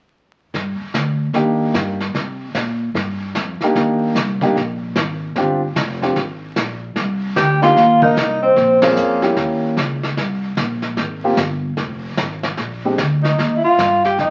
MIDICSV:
0, 0, Header, 1, 7, 480
1, 0, Start_track
1, 0, Key_signature, -3, "minor"
1, 0, Tempo, 401338
1, 652, Time_signature, 4, 2, 24, 8
1, 17104, End_track
2, 0, Start_track
2, 0, Title_t, "Vibraphone"
2, 0, Program_c, 0, 11
2, 8854, Note_on_c, 0, 79, 64
2, 9150, Note_off_c, 0, 79, 0
2, 9150, Note_on_c, 0, 77, 89
2, 9618, Note_on_c, 0, 75, 84
2, 9629, Note_off_c, 0, 77, 0
2, 10085, Note_on_c, 0, 72, 88
2, 10103, Note_off_c, 0, 75, 0
2, 10576, Note_off_c, 0, 72, 0
2, 15863, Note_on_c, 0, 75, 68
2, 16223, Note_on_c, 0, 76, 54
2, 16232, Note_off_c, 0, 75, 0
2, 16323, Note_off_c, 0, 76, 0
2, 16341, Note_on_c, 0, 77, 81
2, 16822, Note_off_c, 0, 77, 0
2, 16827, Note_on_c, 0, 79, 79
2, 16989, Note_off_c, 0, 79, 0
2, 16991, Note_on_c, 0, 75, 75
2, 17104, Note_off_c, 0, 75, 0
2, 17104, End_track
3, 0, Start_track
3, 0, Title_t, "Alto saxophone"
3, 0, Program_c, 1, 65
3, 8809, Note_on_c, 1, 67, 78
3, 9097, Note_off_c, 1, 67, 0
3, 9125, Note_on_c, 1, 65, 72
3, 9569, Note_off_c, 1, 65, 0
3, 9599, Note_on_c, 1, 63, 73
3, 10046, Note_off_c, 1, 63, 0
3, 10077, Note_on_c, 1, 60, 65
3, 10525, Note_off_c, 1, 60, 0
3, 10546, Note_on_c, 1, 58, 63
3, 11159, Note_off_c, 1, 58, 0
3, 15822, Note_on_c, 1, 63, 51
3, 16175, Note_off_c, 1, 63, 0
3, 16222, Note_on_c, 1, 64, 47
3, 16310, Note_off_c, 1, 64, 0
3, 16317, Note_on_c, 1, 65, 71
3, 16763, Note_off_c, 1, 65, 0
3, 16805, Note_on_c, 1, 67, 66
3, 16962, Note_off_c, 1, 67, 0
3, 16977, Note_on_c, 1, 63, 63
3, 17104, Note_off_c, 1, 63, 0
3, 17104, End_track
4, 0, Start_track
4, 0, Title_t, "Upright piano"
4, 0, Program_c, 2, 0
4, 1611, Note_on_c, 2, 63, 38
4, 1612, Note_on_c, 2, 58, 47
4, 1616, Note_on_c, 2, 62, 37
4, 1624, Note_on_c, 2, 67, 53
4, 2339, Note_off_c, 2, 58, 0
4, 2339, Note_off_c, 2, 63, 0
4, 2341, Note_off_c, 2, 62, 0
4, 2345, Note_off_c, 2, 67, 0
4, 4337, Note_on_c, 2, 58, 58
4, 4346, Note_on_c, 2, 62, 48
4, 4347, Note_on_c, 2, 63, 55
4, 4354, Note_on_c, 2, 67, 60
4, 4949, Note_off_c, 2, 58, 0
4, 4953, Note_off_c, 2, 62, 0
4, 4953, Note_off_c, 2, 63, 0
4, 4957, Note_off_c, 2, 67, 0
4, 5281, Note_on_c, 2, 58, 60
4, 5290, Note_on_c, 2, 62, 58
4, 5293, Note_on_c, 2, 63, 52
4, 5298, Note_on_c, 2, 67, 66
4, 5438, Note_off_c, 2, 58, 0
4, 5442, Note_off_c, 2, 62, 0
4, 5443, Note_off_c, 2, 63, 0
4, 5446, Note_off_c, 2, 67, 0
4, 6417, Note_on_c, 2, 60, 52
4, 6427, Note_on_c, 2, 62, 51
4, 6429, Note_on_c, 2, 65, 44
4, 6435, Note_on_c, 2, 67, 56
4, 6693, Note_off_c, 2, 60, 0
4, 6697, Note_off_c, 2, 62, 0
4, 6699, Note_off_c, 2, 65, 0
4, 6702, Note_off_c, 2, 67, 0
4, 7203, Note_on_c, 2, 60, 50
4, 7204, Note_on_c, 2, 62, 45
4, 7205, Note_on_c, 2, 65, 42
4, 7211, Note_on_c, 2, 67, 52
4, 7358, Note_off_c, 2, 60, 0
4, 7359, Note_off_c, 2, 62, 0
4, 7360, Note_off_c, 2, 65, 0
4, 7363, Note_off_c, 2, 67, 0
4, 9110, Note_on_c, 2, 58, 52
4, 9112, Note_on_c, 2, 62, 45
4, 9113, Note_on_c, 2, 63, 50
4, 9123, Note_on_c, 2, 67, 62
4, 9272, Note_off_c, 2, 58, 0
4, 9272, Note_off_c, 2, 62, 0
4, 9273, Note_off_c, 2, 63, 0
4, 9278, Note_off_c, 2, 67, 0
4, 9588, Note_on_c, 2, 58, 49
4, 9595, Note_on_c, 2, 63, 48
4, 9598, Note_on_c, 2, 62, 44
4, 9598, Note_on_c, 2, 70, 55
4, 9750, Note_off_c, 2, 58, 0
4, 9754, Note_off_c, 2, 63, 0
4, 9755, Note_off_c, 2, 62, 0
4, 9755, Note_off_c, 2, 70, 0
4, 10549, Note_on_c, 2, 60, 65
4, 10550, Note_on_c, 2, 61, 56
4, 10554, Note_on_c, 2, 65, 54
4, 10557, Note_on_c, 2, 68, 70
4, 11003, Note_off_c, 2, 60, 0
4, 11004, Note_off_c, 2, 61, 0
4, 11006, Note_off_c, 2, 65, 0
4, 11007, Note_off_c, 2, 68, 0
4, 11033, Note_on_c, 2, 58, 46
4, 11037, Note_on_c, 2, 61, 44
4, 11037, Note_on_c, 2, 64, 42
4, 11044, Note_on_c, 2, 67, 56
4, 11654, Note_off_c, 2, 58, 0
4, 11656, Note_off_c, 2, 61, 0
4, 11656, Note_off_c, 2, 64, 0
4, 11660, Note_off_c, 2, 67, 0
4, 13444, Note_on_c, 2, 58, 49
4, 13449, Note_on_c, 2, 60, 46
4, 13452, Note_on_c, 2, 65, 46
4, 13452, Note_on_c, 2, 67, 58
4, 13596, Note_off_c, 2, 58, 0
4, 13599, Note_off_c, 2, 60, 0
4, 13600, Note_off_c, 2, 65, 0
4, 13601, Note_off_c, 2, 67, 0
4, 15368, Note_on_c, 2, 60, 46
4, 15369, Note_on_c, 2, 62, 43
4, 15372, Note_on_c, 2, 56, 48
4, 15379, Note_on_c, 2, 67, 45
4, 15518, Note_off_c, 2, 60, 0
4, 15518, Note_off_c, 2, 62, 0
4, 15520, Note_off_c, 2, 56, 0
4, 15523, Note_off_c, 2, 67, 0
4, 17104, End_track
5, 0, Start_track
5, 0, Title_t, "Upright bass"
5, 0, Program_c, 3, 32
5, 644, Note_on_c, 3, 43, 70
5, 933, Note_off_c, 3, 43, 0
5, 1123, Note_on_c, 3, 38, 61
5, 1588, Note_off_c, 3, 38, 0
5, 1595, Note_on_c, 3, 39, 72
5, 2070, Note_off_c, 3, 39, 0
5, 2083, Note_on_c, 3, 43, 77
5, 2554, Note_off_c, 3, 43, 0
5, 2561, Note_on_c, 3, 48, 74
5, 3033, Note_off_c, 3, 48, 0
5, 3043, Note_on_c, 3, 46, 64
5, 3514, Note_off_c, 3, 46, 0
5, 3519, Note_on_c, 3, 43, 73
5, 3993, Note_off_c, 3, 43, 0
5, 4004, Note_on_c, 3, 41, 78
5, 4295, Note_off_c, 3, 41, 0
5, 4489, Note_on_c, 3, 39, 75
5, 4954, Note_off_c, 3, 39, 0
5, 4961, Note_on_c, 3, 36, 78
5, 5434, Note_off_c, 3, 36, 0
5, 5447, Note_on_c, 3, 34, 72
5, 5917, Note_off_c, 3, 34, 0
5, 5927, Note_on_c, 3, 32, 81
5, 6397, Note_off_c, 3, 32, 0
5, 6409, Note_on_c, 3, 31, 71
5, 6878, Note_off_c, 3, 31, 0
5, 6883, Note_on_c, 3, 29, 74
5, 7354, Note_off_c, 3, 29, 0
5, 7371, Note_on_c, 3, 32, 69
5, 7838, Note_off_c, 3, 32, 0
5, 7846, Note_on_c, 3, 34, 74
5, 8316, Note_off_c, 3, 34, 0
5, 8323, Note_on_c, 3, 36, 71
5, 8791, Note_off_c, 3, 36, 0
5, 8798, Note_on_c, 3, 38, 74
5, 9272, Note_off_c, 3, 38, 0
5, 9285, Note_on_c, 3, 39, 78
5, 9755, Note_off_c, 3, 39, 0
5, 9762, Note_on_c, 3, 36, 83
5, 10233, Note_off_c, 3, 36, 0
5, 10240, Note_on_c, 3, 34, 74
5, 10712, Note_off_c, 3, 34, 0
5, 10725, Note_on_c, 3, 41, 73
5, 11191, Note_off_c, 3, 41, 0
5, 11198, Note_on_c, 3, 39, 72
5, 11670, Note_off_c, 3, 39, 0
5, 11682, Note_on_c, 3, 37, 80
5, 12152, Note_off_c, 3, 37, 0
5, 12160, Note_on_c, 3, 36, 69
5, 12631, Note_off_c, 3, 36, 0
5, 12643, Note_on_c, 3, 34, 73
5, 13112, Note_off_c, 3, 34, 0
5, 13118, Note_on_c, 3, 32, 75
5, 13589, Note_off_c, 3, 32, 0
5, 13597, Note_on_c, 3, 31, 87
5, 14069, Note_off_c, 3, 31, 0
5, 14074, Note_on_c, 3, 29, 76
5, 14547, Note_off_c, 3, 29, 0
5, 14561, Note_on_c, 3, 32, 67
5, 15028, Note_off_c, 3, 32, 0
5, 15035, Note_on_c, 3, 34, 74
5, 15507, Note_off_c, 3, 34, 0
5, 15525, Note_on_c, 3, 38, 82
5, 15992, Note_off_c, 3, 38, 0
5, 16006, Note_on_c, 3, 39, 73
5, 16293, Note_off_c, 3, 39, 0
5, 16482, Note_on_c, 3, 43, 69
5, 16951, Note_off_c, 3, 43, 0
5, 16958, Note_on_c, 3, 41, 75
5, 17104, Note_off_c, 3, 41, 0
5, 17104, End_track
6, 0, Start_track
6, 0, Title_t, "Muted upright bass strokes"
6, 961, Note_on_c, 9, 29, 33
6, 1080, Note_off_c, 9, 29, 0
6, 4320, Note_on_c, 9, 29, 33
6, 4439, Note_off_c, 9, 29, 0
6, 16312, Note_on_c, 9, 29, 34
6, 16431, Note_off_c, 9, 29, 0
6, 17104, End_track
7, 0, Start_track
7, 0, Title_t, "Drums"
7, 646, Note_on_c, 9, 36, 18
7, 648, Note_on_c, 9, 25, 41
7, 648, Note_on_c, 9, 38, 30
7, 765, Note_off_c, 9, 36, 0
7, 768, Note_off_c, 9, 38, 0
7, 1124, Note_on_c, 9, 36, 20
7, 1125, Note_on_c, 9, 38, 44
7, 1125, Note_on_c, 9, 44, 47
7, 1244, Note_off_c, 9, 36, 0
7, 1245, Note_off_c, 9, 38, 0
7, 1245, Note_off_c, 9, 44, 0
7, 1602, Note_off_c, 9, 25, 0
7, 1602, Note_on_c, 9, 25, 39
7, 1602, Note_on_c, 9, 38, 35
7, 1604, Note_on_c, 9, 36, 19
7, 1722, Note_off_c, 9, 38, 0
7, 1724, Note_off_c, 9, 36, 0
7, 2084, Note_on_c, 9, 36, 20
7, 2084, Note_on_c, 9, 38, 40
7, 2084, Note_on_c, 9, 44, 49
7, 2203, Note_off_c, 9, 38, 0
7, 2203, Note_off_c, 9, 44, 0
7, 2204, Note_off_c, 9, 36, 0
7, 2396, Note_on_c, 9, 38, 33
7, 2516, Note_off_c, 9, 38, 0
7, 2565, Note_on_c, 9, 36, 15
7, 2568, Note_off_c, 9, 25, 0
7, 2568, Note_on_c, 9, 25, 43
7, 2568, Note_on_c, 9, 38, 34
7, 2685, Note_off_c, 9, 36, 0
7, 2687, Note_off_c, 9, 38, 0
7, 3046, Note_on_c, 9, 36, 14
7, 3046, Note_on_c, 9, 38, 45
7, 3046, Note_on_c, 9, 44, 41
7, 3165, Note_off_c, 9, 36, 0
7, 3165, Note_off_c, 9, 38, 0
7, 3165, Note_off_c, 9, 44, 0
7, 3527, Note_on_c, 9, 36, 19
7, 3531, Note_off_c, 9, 25, 0
7, 3531, Note_on_c, 9, 25, 40
7, 3531, Note_on_c, 9, 38, 36
7, 3646, Note_off_c, 9, 36, 0
7, 3651, Note_off_c, 9, 38, 0
7, 4006, Note_on_c, 9, 38, 41
7, 4006, Note_on_c, 9, 44, 45
7, 4008, Note_on_c, 9, 36, 15
7, 4126, Note_off_c, 9, 38, 0
7, 4126, Note_off_c, 9, 44, 0
7, 4128, Note_off_c, 9, 36, 0
7, 4313, Note_on_c, 9, 38, 28
7, 4433, Note_off_c, 9, 38, 0
7, 4489, Note_on_c, 9, 36, 16
7, 4490, Note_off_c, 9, 25, 0
7, 4490, Note_on_c, 9, 25, 40
7, 4490, Note_on_c, 9, 38, 34
7, 4608, Note_off_c, 9, 36, 0
7, 4610, Note_off_c, 9, 38, 0
7, 4969, Note_on_c, 9, 36, 17
7, 4972, Note_on_c, 9, 38, 47
7, 4972, Note_on_c, 9, 44, 55
7, 5089, Note_off_c, 9, 36, 0
7, 5091, Note_off_c, 9, 38, 0
7, 5091, Note_off_c, 9, 44, 0
7, 5277, Note_on_c, 9, 36, 38
7, 5279, Note_on_c, 9, 38, 31
7, 5397, Note_off_c, 9, 36, 0
7, 5398, Note_off_c, 9, 38, 0
7, 5453, Note_on_c, 9, 36, 15
7, 5462, Note_off_c, 9, 25, 0
7, 5462, Note_on_c, 9, 25, 37
7, 5462, Note_on_c, 9, 38, 32
7, 5572, Note_off_c, 9, 36, 0
7, 5581, Note_off_c, 9, 38, 0
7, 5927, Note_on_c, 9, 38, 49
7, 5927, Note_on_c, 9, 44, 43
7, 5931, Note_on_c, 9, 36, 21
7, 6047, Note_off_c, 9, 38, 0
7, 6047, Note_off_c, 9, 44, 0
7, 6050, Note_off_c, 9, 36, 0
7, 6406, Note_off_c, 9, 25, 0
7, 6406, Note_on_c, 9, 25, 36
7, 6406, Note_on_c, 9, 38, 37
7, 6409, Note_on_c, 9, 36, 19
7, 6526, Note_off_c, 9, 38, 0
7, 6529, Note_off_c, 9, 36, 0
7, 6889, Note_on_c, 9, 36, 20
7, 6890, Note_on_c, 9, 38, 50
7, 6890, Note_on_c, 9, 44, 52
7, 7008, Note_off_c, 9, 36, 0
7, 7010, Note_off_c, 9, 38, 0
7, 7010, Note_off_c, 9, 44, 0
7, 7206, Note_on_c, 9, 38, 28
7, 7325, Note_off_c, 9, 38, 0
7, 7367, Note_off_c, 9, 25, 0
7, 7367, Note_on_c, 9, 25, 39
7, 7367, Note_on_c, 9, 38, 35
7, 7368, Note_on_c, 9, 36, 14
7, 7487, Note_off_c, 9, 38, 0
7, 7488, Note_off_c, 9, 36, 0
7, 7846, Note_on_c, 9, 36, 13
7, 7848, Note_on_c, 9, 38, 45
7, 7848, Note_on_c, 9, 44, 46
7, 7966, Note_off_c, 9, 36, 0
7, 7967, Note_off_c, 9, 38, 0
7, 7967, Note_off_c, 9, 44, 0
7, 8321, Note_off_c, 9, 25, 0
7, 8321, Note_on_c, 9, 25, 42
7, 8321, Note_on_c, 9, 38, 40
7, 8325, Note_on_c, 9, 36, 24
7, 8441, Note_off_c, 9, 38, 0
7, 8444, Note_off_c, 9, 36, 0
7, 8805, Note_on_c, 9, 36, 21
7, 8806, Note_on_c, 9, 38, 50
7, 8806, Note_on_c, 9, 44, 47
7, 8925, Note_off_c, 9, 36, 0
7, 8925, Note_off_c, 9, 38, 0
7, 8925, Note_off_c, 9, 44, 0
7, 9115, Note_on_c, 9, 38, 31
7, 9235, Note_off_c, 9, 38, 0
7, 9285, Note_on_c, 9, 36, 22
7, 9289, Note_off_c, 9, 25, 0
7, 9289, Note_on_c, 9, 25, 41
7, 9289, Note_on_c, 9, 38, 34
7, 9405, Note_off_c, 9, 36, 0
7, 9409, Note_off_c, 9, 38, 0
7, 9592, Note_on_c, 9, 36, 58
7, 9711, Note_off_c, 9, 36, 0
7, 9766, Note_on_c, 9, 36, 19
7, 9769, Note_on_c, 9, 38, 47
7, 9769, Note_on_c, 9, 44, 49
7, 9885, Note_off_c, 9, 36, 0
7, 9888, Note_off_c, 9, 38, 0
7, 9888, Note_off_c, 9, 44, 0
7, 10245, Note_on_c, 9, 36, 24
7, 10247, Note_off_c, 9, 25, 0
7, 10247, Note_on_c, 9, 25, 40
7, 10247, Note_on_c, 9, 38, 37
7, 10364, Note_off_c, 9, 36, 0
7, 10367, Note_off_c, 9, 38, 0
7, 10547, Note_on_c, 9, 38, 67
7, 10547, Note_on_c, 9, 51, 52
7, 10666, Note_off_c, 9, 38, 0
7, 10666, Note_off_c, 9, 51, 0
7, 10719, Note_on_c, 9, 44, 46
7, 10839, Note_off_c, 9, 44, 0
7, 11029, Note_on_c, 9, 38, 32
7, 11149, Note_off_c, 9, 38, 0
7, 11200, Note_off_c, 9, 25, 0
7, 11200, Note_on_c, 9, 25, 43
7, 11200, Note_on_c, 9, 38, 38
7, 11201, Note_on_c, 9, 36, 21
7, 11320, Note_off_c, 9, 38, 0
7, 11321, Note_off_c, 9, 36, 0
7, 11683, Note_on_c, 9, 36, 16
7, 11689, Note_on_c, 9, 38, 45
7, 11689, Note_on_c, 9, 44, 47
7, 11803, Note_off_c, 9, 36, 0
7, 11808, Note_off_c, 9, 38, 0
7, 11808, Note_off_c, 9, 44, 0
7, 12000, Note_on_c, 9, 38, 28
7, 12120, Note_off_c, 9, 38, 0
7, 12165, Note_on_c, 9, 36, 17
7, 12168, Note_off_c, 9, 25, 0
7, 12168, Note_on_c, 9, 25, 45
7, 12168, Note_on_c, 9, 38, 38
7, 12284, Note_off_c, 9, 36, 0
7, 12287, Note_off_c, 9, 38, 0
7, 12642, Note_on_c, 9, 36, 22
7, 12642, Note_on_c, 9, 38, 47
7, 12642, Note_on_c, 9, 44, 46
7, 12762, Note_off_c, 9, 36, 0
7, 12762, Note_off_c, 9, 38, 0
7, 12762, Note_off_c, 9, 44, 0
7, 12942, Note_on_c, 9, 38, 30
7, 13062, Note_off_c, 9, 38, 0
7, 13119, Note_off_c, 9, 25, 0
7, 13119, Note_on_c, 9, 25, 46
7, 13119, Note_on_c, 9, 38, 38
7, 13122, Note_on_c, 9, 36, 19
7, 13239, Note_off_c, 9, 38, 0
7, 13241, Note_off_c, 9, 36, 0
7, 13600, Note_on_c, 9, 38, 43
7, 13600, Note_on_c, 9, 44, 46
7, 13601, Note_on_c, 9, 36, 18
7, 13720, Note_off_c, 9, 38, 0
7, 13720, Note_off_c, 9, 44, 0
7, 13721, Note_off_c, 9, 36, 0
7, 14077, Note_off_c, 9, 25, 0
7, 14077, Note_on_c, 9, 25, 38
7, 14077, Note_on_c, 9, 38, 35
7, 14079, Note_on_c, 9, 36, 18
7, 14196, Note_off_c, 9, 38, 0
7, 14199, Note_off_c, 9, 36, 0
7, 14559, Note_on_c, 9, 38, 50
7, 14559, Note_on_c, 9, 44, 45
7, 14560, Note_on_c, 9, 36, 23
7, 14679, Note_off_c, 9, 38, 0
7, 14679, Note_off_c, 9, 44, 0
7, 14680, Note_off_c, 9, 36, 0
7, 14870, Note_on_c, 9, 38, 42
7, 14989, Note_off_c, 9, 38, 0
7, 15037, Note_off_c, 9, 25, 0
7, 15037, Note_on_c, 9, 25, 39
7, 15037, Note_on_c, 9, 38, 36
7, 15039, Note_on_c, 9, 36, 16
7, 15156, Note_off_c, 9, 38, 0
7, 15159, Note_off_c, 9, 36, 0
7, 15523, Note_on_c, 9, 36, 22
7, 15526, Note_on_c, 9, 38, 48
7, 15526, Note_on_c, 9, 44, 38
7, 15643, Note_off_c, 9, 36, 0
7, 15646, Note_off_c, 9, 38, 0
7, 15646, Note_off_c, 9, 44, 0
7, 15839, Note_on_c, 9, 38, 31
7, 15959, Note_off_c, 9, 38, 0
7, 16008, Note_on_c, 9, 36, 20
7, 16013, Note_off_c, 9, 25, 0
7, 16013, Note_on_c, 9, 25, 42
7, 16013, Note_on_c, 9, 38, 38
7, 16127, Note_off_c, 9, 36, 0
7, 16133, Note_off_c, 9, 38, 0
7, 16485, Note_on_c, 9, 36, 21
7, 16488, Note_on_c, 9, 38, 51
7, 16488, Note_on_c, 9, 44, 40
7, 16604, Note_off_c, 9, 36, 0
7, 16608, Note_off_c, 9, 38, 0
7, 16608, Note_off_c, 9, 44, 0
7, 16798, Note_on_c, 9, 38, 30
7, 16917, Note_off_c, 9, 38, 0
7, 16966, Note_off_c, 9, 25, 0
7, 16966, Note_on_c, 9, 25, 51
7, 16966, Note_on_c, 9, 36, 17
7, 16966, Note_on_c, 9, 38, 34
7, 17086, Note_off_c, 9, 36, 0
7, 17086, Note_off_c, 9, 38, 0
7, 17104, Note_off_c, 9, 25, 0
7, 17104, End_track
0, 0, End_of_file